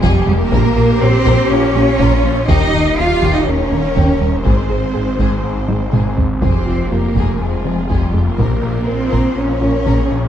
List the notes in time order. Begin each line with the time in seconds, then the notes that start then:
Already playing: F1
0.03 F1 F2 F3 G3 G4 G#4, taiko
0.27 F1 F2 G#3 G4
0.40 A#3 A#4
0.52 A#1 A#2 A#3 F4 G4 A#4, taiko
0.77 A#1 A#2 F4 A#4
1.01 A#1 A#2 C4 C#4 A#4 C5
1.26 A#1 A#2 A#3 A#4, taiko
1.50 A#2 C#4 F4 A#4 C#5
1.75 A#1 A#3 C#4 F4
1.99 A#1 A#2 A#3 F4 A#4, taiko
2.24 A#1 A#2 C#4 F4
2.48 D#1 D#2 D#3 D#4 G4 A#4 D#5, taiko
2.73 D#2 D#4
2.98 D#2 A#3 D#4 F4 G4 F5
3.22 D#2 D#3 G4, taiko
3.34 D#4 D#5
3.46 D#2 C#4 G4 A#4 C#5
3.72 D#2 D#3 A#3
3.96 D#2 D#3 G4, taiko
4.21 D#2 G3 D#4
4.45 G#1 G#2 G#3 C4 G#4 C5, taiko
4.70 G#1 G#2 D#4 G#4
4.94 G#1 G#2 C4 G#4
5.19 G#1 G#2 G#3 G#4, taiko
5.44 G#2 G#4 C5
5.68 G#1 G#3 C4 D#4, taiko high
5.93 G#1 G#2 G#3 G#4, taiko mid
6.17 G#1 G#2 C4 D#4, taiko low
6.42 F1 F2 F3 C4 G4 G#4 C5, taiko
6.66 F1 F2 F4 G4
6.91 F1 F2 A#3 F4 A#4
7.15 F1 F2 F3 G#4, taiko
7.40 F2 G#3 F4 G#4 C5
7.65 F1 F3 C4 F4
7.89 F1 F2 F3 G3 G4 G#4, taiko
8.14 F1 F2 G#3 G4
8.25 A#3 A#4
8.38 A#1 A#2 A#3 F4 G4 A#4 C5, taiko
8.63 A#1 A#2 F4 A#4
8.86 A#1 A#2 C4 C#4 F4 A#4 C5
9.12 A#1 A#2 A#3 A#4, taiko
9.36 A#2 C#4 F4 A#4 C5 C#5
9.61 A#1 A#3 C#4 F4
9.86 A#1 A#2 A#3 G#4 A#4, taiko
10.10 A#1 A#2 C#4 F4